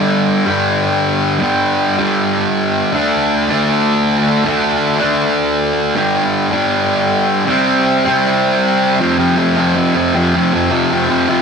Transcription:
Already playing: G2 D3 G3 D4
0.46 G2 D3 G3
1.39 G2 D3
1.44 G3
1.98 G2 D3 G3
2.92 D3 A3 D4
3.49 D3 A3 D4
4.45 D3 A3
4.49 D4
5.00 A3 D4
5.04 D3
5.95 G2 D3 G3
6.51 D3 G3
6.56 G2
7.46 C3 G3 C4
8.05 C3 G3 C4
9.00 F2 C3 F3
9.19 F2 C3 F3
9.37 F2 C3 F3
9.57 F2 C3 F3
9.76 F2 C3 F3
9.95 F2 C3 F3
10.15 F2 C3 F3
10.35 F2 C3 F3
10.53 F2 C3 F3
10.70 F2 C3 F3
10.91 F2 C3 F3
11.10 F2 C3 F3
11.29 F2 C3 F3

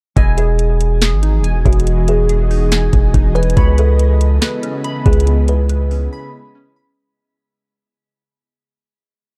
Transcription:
0.16 E1 E3 G#3 B3 E4 F#4 G#4 D#5 G#5, kick, closed hi-hat
0.37 G#4, closed hi-hat
0.59 closed hi-hat
0.81 closed hi-hat
1.02 G#4, snare, closed hi-hat
1.12 G#1
1.23 D#4, closed hi-hat
1.39 E1
1.44 G#5, closed hi-hat
1.65 E1 F#4 G#4, kick, closed hi-hat
1.73 closed hi-hat
1.80 closed hi-hat
1.87 closed hi-hat
2.08 G#4, closed hi-hat
2.29 G#4, closed hi-hat
2.51 D#4, open hi-hat
2.72 G#5, snare, closed hi-hat
2.93 E1, kick, closed hi-hat
3.14 E1 D#4, kick, closed hi-hat
3.35 B4 G#5, closed hi-hat
3.43 closed hi-hat
3.50 closed hi-hat
3.57 C#2 C#3 G#3 B3 E4 C#5 B5, kick, closed hi-hat
3.78 A4 B4, closed hi-hat
3.99 closed hi-hat
4.21 closed hi-hat
4.41 B4, snare, closed hi-hat
4.63 C#4, closed hi-hat
4.84 B5, closed hi-hat
5.06 C#2 G#4 B4, kick, closed hi-hat
5.13 closed hi-hat
5.20 closed hi-hat
5.27 closed hi-hat
5.48 B4, closed hi-hat
5.69 B4, closed hi-hat
5.91 C#4, open hi-hat
6.13 B5
6.55 C#4
6.76 B5

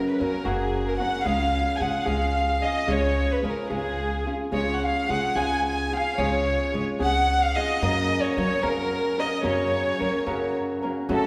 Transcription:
Already playing: F#2 C#3 F#3 A#3 C#4 F#4
0.08 B4
0.20 F#2 F#3 A#3 C#4 F#4 A#4
0.45 F#1 F#2 C#3 F#3 A#3 C#4 F#4 G#4
0.88 A#4
0.99 F#3 A#3 C#4 F#4 F#5
1.24 C#2 C#3 G#3 C#4 F4 G#4 F5
1.75 G#5
1.80 C#3 G#3 C#4 F4 G#4 F#5
2.05 C#2 C#3 G#3 C#4 F4 G#4 F5
2.62 C#4 F4 G#4 D#5
2.87 C#2 C#3 G#3 C#4 F4 G#4 C#5
3.32 B4
3.42 C#3 G#3 C#4 F4 G#4 A#4
3.70 C#2 C#3 G#3 C#4 F4 G#4
4.25 C#4 F4 G#4
4.51 C#2 C#3 G#3 C#4 F4 G#4 C#5
4.75 F#5
4.85 F5
5.08 C#3 G#3 C#4 F4 G#4 F#5
5.35 C#2 C#3 G#3 C#4 F4 G#4 G#5
5.67 G#5
5.92 C#4 F4 G#4 F5
6.18 C#2 C#3 G#3 C#4 F4 G#4 C#5
6.73 C#3 G#3 C#4 F4 G#4
6.99 C#2 C#3 G#3 C#4 G#4 F#5
7.43 F5
7.56 C#4 F4 G#4 D#5
7.82 F#2 C#3 F#3 A#3 C#4 A#4
8.25 C#5
8.37 F#3 A#3 C#4 A#4 C#5
8.63 F#2 C#3 F#3 A#3 C#4 A#4
9.18 F#3 A#3 C#4 A#4 D#5
9.42 F#2 C#3 F#3 A#3 C#4 A#4 C#5
9.99 F#3 A#3 C#4 A#4
10.27 F#2 C#3 F#3 A#3 C#4 A#4
10.82 F#3 A#3 C#4 A#4
11.09 F#2 C#3 F#3 A3 C#4 F#4 A4

